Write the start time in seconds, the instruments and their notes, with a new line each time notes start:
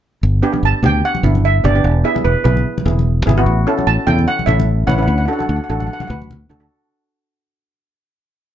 0.23 fingered electric bass G1
0.42 steel pan B3 D4 G4
0.52 steel pan B3 D4 G4, high conga
0.63 fingered electric bass G1, steel pan A5
0.83 fingered electric bass D2, steel pan B3 D4 G4 G5, low conga
1.05 steel pan F#5
1.15 high conga
1.23 fingered electric bass G1, steel pan B3 D4 E4, low conga
1.35 high conga
1.45 steel pan E5
1.64 fingered electric bass G1, steel pan B3 D4 G4 D5, low conga
1.75 steel pan B3 D4 G4
1.84 fingered electric bass E1
2.04 steel pan B3 E4 G#4 E5
2.14 steel pan B3 E4 G#4, high conga
2.25 fingered electric bass E1, steel pan B4
2.44 fingered electric bass B1, steel pan B3 E4 G#4 B4, low conga
2.57 high conga
2.78 high conga
2.85 fingered electric bass E1, steel pan B3 E4 G#4, low conga
2.99 high conga
3.26 fingered electric bass G#1, steel pan B3 E4 G#4, low conga
3.38 steel pan B3 E4 F#4
3.46 fingered electric bass A1
3.67 steel pan C#4 E4 A4
3.77 steel pan C#4 E4 F#4, high conga
3.87 fingered electric bass A1, steel pan A5
4.07 fingered electric bass E2, steel pan C#4 E4 A4 G5, low conga
4.19 high conga
4.28 steel pan F#5
4.39 high conga
4.46 fingered electric bass A1, steel pan C#4 E4 A4 E5, low conga
4.60 high conga
4.87 fingered electric bass A1, steel pan C#4 E4 B4 F#5, low conga
4.98 steel pan C#4 E4 B4
5.02 steel pan F#5
5.08 fingered electric bass D2, steel pan F#5
5.18 steel pan F#5
5.25 steel pan D4 F#4 A4 F#5
5.33 steel pan F#5
5.38 steel pan D4 F#4 A4 F#5, high conga
5.49 fingered electric bass D2, steel pan F#5
5.56 steel pan F#5
5.64 steel pan F#5
5.69 fingered electric bass A1, steel pan D4 F#4 A4 F#5
5.80 steel pan F#5, high conga
5.87 steel pan F#5
5.93 steel pan F#5
6.00 steel pan F#5, high conga
6.07 fingered electric bass D2, steel pan D4 F#4 B4 F#5, low conga
6.22 high conga
6.31 high conga, low conga
6.49 fingered electric bass D2, steel pan D4 F#4 A4, low conga
6.60 steel pan D4 F#4 A4